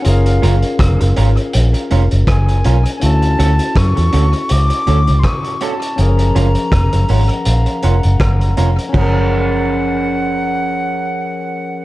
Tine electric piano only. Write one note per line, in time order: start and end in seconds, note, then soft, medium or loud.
0.02 2.96 C#4 medium
0.02 2.97 F4 medium
0.02 2.98 G#4 medium
0.08 2.99 A#4 medium
3.00 5.93 C#4 medium
3.00 5.94 E4 medium
3.00 5.95 F#4 medium
3.06 5.96 A4 medium
5.96 8.90 F3 medium
5.96 8.88 C#4 medium
6.00 8.91 G#4 medium
6.00 8.92 A#4 medium
7.10 7.44 F#5 medium
7.47 7.81 F5 medium
7.84 8.18 F#5 medium
8.21 8.55 A#5 medium
8.58 8.92 A#5 medium
8.89 11.85 F3 medium
8.89 11.85 C#4 medium
8.97 11.85 G#4 medium
9.01 11.85 A#4 medium